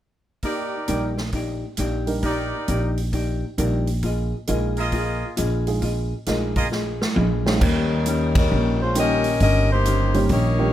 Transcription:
0.43 hollow-body jazz guitar A#3 D#4 G4 D5, trumpet section D#4 G4 A#4 D5, kick, open hi-hat
0.88 upright bass A#1, grand piano G3 D4 D#4 A#4, hollow-body jazz guitar A#3 D#4 G4 D5, closed hi-hat
1.17 snare
1.32 hollow-body jazz guitar A#3 D#4 G4 D5, kick, open hi-hat
1.77 upright bass A#1, hollow-body jazz guitar A#3 D#4 G4 D5, closed hi-hat
2.06 grand piano G3 D4 D#4 A#4, open hi-hat
2.23 hollow-body jazz guitar A#3 D#4 G4 D5, trumpet section D#4 G4 A#4 D5, kick, open hi-hat
2.68 upright bass A#1, hollow-body jazz guitar A#3 D#4 G4 D5, closed hi-hat
2.98 open hi-hat
3.13 hollow-body jazz guitar A#3 D#4 G4 D5, kick, open hi-hat
3.58 upright bass A#1, grand piano G3 D4 D#4 A#4, hollow-body jazz guitar A#3 D#4 G4 D5, closed hi-hat
3.87 open hi-hat
4.03 hollow-body jazz guitar A#3 F4 G#4 D#5, kick, open hi-hat
4.47 upright bass A#1, grand piano G#3 D#4 F4 A#4, hollow-body jazz guitar A#3 F4 G#4 D#5, closed hi-hat
4.77 trumpet section F4 G#4 A#4 D#5, open hi-hat
4.92 hollow-body jazz guitar A#3 F4 G#4 D#5, kick, open hi-hat
5.37 upright bass A#1, hollow-body jazz guitar A#3 F4 G#4 D#5, closed hi-hat
5.67 grand piano G#3 D#4 F4 G#4, open hi-hat
5.81 hollow-body jazz guitar A#3 F4 G#4 D#5, kick, open hi-hat
6.26 upright bass A#1, grand piano G#3 D#4 F4 A#4, hollow-body jazz guitar A#3 F4 G#4 D#5, snare, closed hi-hat
6.56 trumpet section F4 G#4 A#4 D#5, kick, open hi-hat
6.70 hollow-body jazz guitar A#3 F4 G#4 D#5, snare
7.01 snare
7.15 upright bass A#1, hollow-body jazz guitar A#3 F4 G#4 D#5, high tom
7.46 saxophone section F3 A#3 D#4 G#4, grand piano G3 C#4 D#4 C5, snare
7.60 upright bass D#2, hollow-body jazz guitar D#3 A#3 C#4 G4, saxophone section G3 C#4 D#4 A#4, kick, crash
8.06 hollow-body jazz guitar D#3 A#3 C#4 G4, closed hi-hat
8.35 saxophone section G3 C#4 D#4 A#4, kick, ride
8.50 upright bass A#1, hollow-body jazz guitar D#3 A#3 C#4 G4
8.82 saxophone section G#3 C#4 F4 C5
8.95 grand piano D#3 G3 A#3 C#4 G4, hollow-body jazz guitar D#3 A#3 C#4 G4, saxophone section G4 A#4, closed hi-hat
8.99 saxophone section C#4 D#5
9.24 open hi-hat
9.40 upright bass G1, hollow-body jazz guitar D#3 A#3 C#4 G4, saxophone section C#4 G4 A#4 D#5, kick, open hi-hat
9.72 saxophone section A#3 D#4 G4 C5
9.85 hollow-body jazz guitar D#3 A#3 C#4 G4, closed hi-hat
10.14 grand piano D#3 G3 A#3 C#4 G4, open hi-hat
10.29 upright bass A#1, hollow-body jazz guitar D#3 A#3 C#4 G4, saxophone section A#3 D#4 G4 C#5, kick, open hi-hat
10.59 grand piano D#3 G3 A#3 C#4 G4

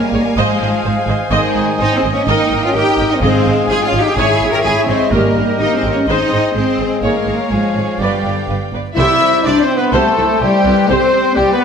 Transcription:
Already playing: french horn section G3, cello section A#3, violin section A#4 F5 G#5, flute G#5
0.13 double bass section G#1, viola section G#4 C#5
0.36 double bass section G#1, french horn section F3, cello section G#3, violin section G#4, viola section C5 D#5, clarinet C5, oboe D#5, flute F5
0.61 double bass section G#1, viola section C5 D#5
0.85 double bass section G#1, viola section C5
1.08 double bass section G#1, viola section C5 D#5
1.31 double bass section G#1, french horn section D#3, cello section G#3, violin section G#4 D#5, viola section C5 D#5, flute G#5
1.55 double bass section G#1, viola section C5 D#5
1.80 double bass section G#1, french horn section C4, cello section D#4, viola section C5, violin section D#5
1.96 french horn section G#3, cello section C4, violin section C5
2.03 double bass section G#1, viola section C5 D#5
2.12 french horn section A#3, cello section C#4, violin section C#5
2.27 double bass section G#1, french horn section A#3, cello section D#4, viola section A#4 D#5, clarinet A#4, violin section D#5 G5, flute G5
2.51 double bass section G#1, viola section A#4 D#5
2.63 french horn section C#4, cello section F4, violin section F5
2.74 double bass section G#1, french horn section D#4, cello section G4, viola section A#4, violin section G5
2.98 double bass section G#1, viola section A#4 D#5
3.10 french horn section C4, cello section D#4, violin section D#5
3.21 double bass section G#1, timpani G#2, french horn section G#3, cello section C4, clarinet G#4, viola section G#4 D#5, violin section C5 F5 G#5, flute F5
3.45 double bass section G#1, viola section G#4 D#5
3.69 double bass section G#1, french horn section F4, cello section G#4, viola section G#4 C5, violin section G#5
3.85 french horn section C#4, cello section F4, violin section F5
3.93 double bass section G#1, viola section G#4 D#5
4.00 french horn section D#4, cello section G4, violin section G5
4.15 double bass section G#1, timpani G#2, french horn section E4, cello section G#4, viola section G#4 C#5, oboe C#5, violin section E5 G#5, flute E5
4.41 double bass section G#1, viola section G#4 C#5
4.52 french horn section G4, cello section A#4, violin section A#5
4.63 double bass section G#1, french horn section E4, cello section G#4, viola section G#4, violin section G#5
4.87 double bass section G#1, french horn section G#3, cello section C4, viola section G#4 C#5, violin section C5
5.10 double bass section G#1, timpani G#2, french horn section G3, cello section A#3, clarinet G4, oboe A#4, violin section A#4 D#5, viola section A#4, flute D#5
5.14 viola section G4
5.36 double bass section G#1, viola section G4 A#4
5.59 double bass section G#1, french horn section A#3, cello section D#4, viola section G4, violin section D#5
5.74 french horn section G#3, cello section C4, violin section C5
5.84 double bass section G#1, viola section G4 A#4
5.90 french horn section A#3, cello section C#4, violin section C#5
6.05 double bass section G#1, french horn section C4, cello section D#4, clarinet G#4, viola section G#4, oboe C5, violin section D#5
6.09 viola section C5
6.31 double bass section G#1, viola section G#4 C5
6.52 double bass section G#1, french horn section G#3, cello section C4, violin section C5
6.56 viola section G#4
6.79 double bass section G#1, viola section G#4 C5
7.01 double bass section G#1, french horn section G#3, cello section A#3, viola section G#4 C#5, violin section A#4 C#5 F5, oboe C#5, flute F5
7.27 double bass section G#1, viola section G#4 C#5
7.50 double bass section G#1, french horn section F3, cello section G#3, violin section G#4, viola section G#4
7.76 double bass section G#1, viola section G#4 C#5
7.98 double bass section G1, french horn section D3, cello section G3, violin section G4 F5 G5, clarinet B4, viola section B4 D5, oboe D5
8.24 double bass section G1, viola section B4 D5
8.48 double bass section G1, viola section B4
8.73 double bass section G1, viola section B4 D5
8.95 double bass section C2, timpani C3, french horn section E4, cello section E4, clarinet G4, viola section G4 C5, oboe D5, violin section E5, trumpet E5
8.99 flute E6
9.21 clarinet C5
9.43 double bass section C2, french horn section D4, cello section D4, viola section E4 G4, oboe C5, violin section D5, trumpet D5, flute D6
9.62 cello section C4, french horn section C4, violin section C5, trumpet C5, flute C6
9.76 french horn section B3, cello section B3, violin section B4, trumpet B4, flute B5
9.93 double bass section C2, cello section A3, french horn section A3, viola section G4 C5, violin section A4, trumpet A4, flute A5
10.17 double bass section C2, viola section C4 E4
10.40 double bass section C2, cello section G3, french horn section G3, viola section E4 G4, violin section G4, trumpet G4, clarinet C5, flute G5
10.65 double bass section C2, viola section C4 E4, clarinet B4
10.89 double bass section C2, french horn section C4, cello section C4, viola section G4 C5, clarinet A4, trumpet C5, oboe C5, violin section C5, flute C6
11.12 clarinet G4
11.34 double bass section C2, french horn section G3, cello section G3, viola section E4 G4, violin section G4, trumpet G4, oboe D5, flute G5
11.52 cello section B3, french horn section B3, violin section B4, trumpet B4, flute B5

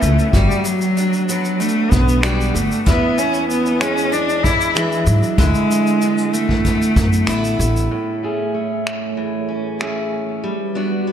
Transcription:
Already playing: steel-string acoustic guitar A2 A3 C#4 E4
0.02 upright bass C#2, cello A3, shaker
0.19 shaker
0.33 upright bass G1, cello G3, steel-string acoustic guitar F#4, kick, shaker
0.51 shaker
0.65 cello F#3, shaker
0.82 shaker
0.97 steel-string acoustic guitar D4, shaker
1.13 shaker
1.28 cello F#3, steel-string acoustic guitar B3, shaker
1.45 shaker
1.60 cello A3, steel-string acoustic guitar D4, shaker
1.69 shaker
1.91 upright bass B1, cello B3, kick, shaker
2.09 shaker
2.23 cello G3, steel-string acoustic guitar B3 D4 F#4, finger snap, shaker
2.41 shaker
2.54 upright bass G1, cello A3, shaker
2.72 shaker
2.86 steel-string acoustic guitar E2 E4, upright bass E2, cello B3, kick, shaker
3.18 cello C#4, shaker
3.34 shaker
3.50 cello B3, shaker
3.66 shaker
3.81 steel-string acoustic guitar G#3, cello C#4, finger snap, shaker
3.98 shaker
4.12 steel-string acoustic guitar D4, cello D4, shaker
4.29 shaker
4.43 cello E4, kick, shaker
4.61 shaker
4.75 cello E3, steel-string acoustic guitar G#3 D4 E4, finger snap, shaker
4.92 shaker
5.06 upright bass G#2, cello F#3, shaker
5.23 shaker
5.38 upright bass D2, steel-string acoustic guitar D3 E4, cello G#3, kick, shaker
5.55 shaker
5.71 shaker
5.87 shaker
6.01 steel-string acoustic guitar B3, shaker
6.18 shaker
6.33 cello A3, steel-string acoustic guitar A3, shaker
6.49 kick
6.65 steel-string acoustic guitar B3, kick, shaker
6.82 shaker
6.96 upright bass F#2, kick, shaker
7.13 shaker
7.27 upright bass A1, steel-string acoustic guitar A3 B3 E4, finger snap, shaker
7.45 shaker
7.59 upright bass A1, shaker
7.77 shaker
7.91 steel-string acoustic guitar A2, ambient pad A3 G#4 C#5
8.23 steel-string acoustic guitar A3 C#4 G#4
8.54 steel-string acoustic guitar A3
8.87 finger snap
9.17 steel-string acoustic guitar E3
9.49 steel-string acoustic guitar C#4
9.81 steel-string acoustic guitar A3 C#4 G#4, finger snap
10.43 ambient pad G3 F#4 B4, steel-string acoustic guitar G3
10.75 steel-string acoustic guitar B3 D4 F#4
11.07 steel-string acoustic guitar B3

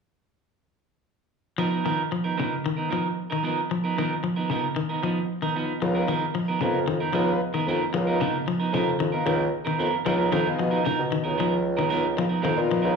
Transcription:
1.58 clean electric guitar F3 B3 D#4 A#4
1.71 clean electric guitar B3 D#4 A#4
1.84 clean electric guitar D#3 F3 B3 D#4 A#4
2.12 clean electric guitar F3
2.24 clean electric guitar B3 D#4 A#4
2.37 clean electric guitar C#3 F3 B3 D#4 A#4
2.66 clean electric guitar D#3
2.77 clean electric guitar B3 D#4 A#4
2.89 clean electric guitar F3 B3 D#4 A#4
3.30 clean electric guitar D#3 D#4 A#4, muted clean electric guitar stroke
3.43 clean electric guitar F3 B3 D#4 A#4
3.71 clean electric guitar F3
3.84 clean electric guitar B3 D#4 A#4
3.97 clean electric guitar D#3 F3 B3 D#4 A#4
4.24 clean electric guitar F3
4.36 clean electric guitar B3 D#4 A#4
4.50 clean electric guitar C#3 F3 B3 D#4 A#4
4.76 clean electric guitar D#3
4.89 clean electric guitar B3 D#4 A#4
5.02 clean electric guitar F3 B3 D#4
5.42 clean electric guitar D#3 B3 D#4 A#4
5.55 clean electric guitar F3 B3 D#4, muted clean electric guitar stroke
5.82 bassoon C#2, clean electric guitar F3, transistor combo organ B3 D#4 F4 A#4
5.95 clean electric guitar B3 D#4 A#4
6.08 clean electric guitar D#3 F3 B3 D#4 A#4
6.35 clean electric guitar F3
6.48 clean electric guitar B3 D#4 A#4
6.61 bassoon F2, clean electric guitar C#3 F3 B3 A#4, transistor combo organ B3 D#4 F4 A#4, muted clean electric guitar stroke
6.87 bassoon F2, clean electric guitar D#3
7.00 clean electric guitar B3 D#4 A#4
7.13 bassoon C#2, clean electric guitar F3 B3 D#4 A#4, transistor combo organ B3 D#4 F4 B4
7.54 clean electric guitar D#3 B3 D#4 A#4
7.67 bassoon F2, clean electric guitar F3 B3 D#4 A#4
7.93 bassoon C#2, clean electric guitar F3, transistor combo organ B3 D#4 F4 A#4
8.07 clean electric guitar B3 D#4 A#4
8.20 clean electric guitar C#3 F3 B3 D#4 A#4
8.48 clean electric guitar F3
8.60 clean electric guitar B3 D#4 A#4
8.73 bassoon F2, clean electric guitar C#3 F3 B3 D#4 A#4
8.99 bassoon F2, clean electric guitar D#3
9.12 transistor combo organ B3 D#4 F4 A#4, clean electric guitar B3 A#4
9.25 bassoon C#2, clean electric guitar D#3 F3 B3 D#4 A#4
9.65 clean electric guitar D#3 B3 D#4 A#4
9.79 bassoon F2, clean electric guitar F3 B3 A#4, transistor combo organ B3 D#4 F4 A#4
10.05 bassoon C#2, clean electric guitar F3 B3 D#4 A#4, transistor combo organ B3 D#4 F4 A#4
10.18 clean electric guitar B3 D#4 A#4
10.31 bassoon F2, clean electric guitar D#3 F3 B3 D#4 A#4, transistor combo organ F4 A#4
10.47 transistor combo organ B3 D#4 F4 G#4
10.59 bassoon B2, clean electric guitar F3
10.71 clean electric guitar B3 D#4 A#4
10.84 clean electric guitar C#3 F3 D#4 A#4, muted clean electric guitar stroke
10.99 bassoon B2
11.12 clean electric guitar D#3
11.24 bassoon C#2, clean electric guitar B3 D#4 A#4
11.37 clean electric guitar F3 B3 D#4 A#4
11.77 clean electric guitar D#3 B3 D#4 A#4
11.89 clean electric guitar F3 B3 D#4 A#4
12.17 clean electric guitar F3, transistor combo organ B3 D#4 F4 A#4
12.29 clean electric guitar B3 D#4 A#4
12.42 bassoon F2, clean electric guitar D#3 F3 B3 D#4 A#4, transistor combo organ F4 A#4
12.57 bassoon A#2, transistor combo organ B3 D#4 F4 A#4
12.71 clean electric guitar F3
12.82 bassoon C#2, clean electric guitar B3 D#4 A#4

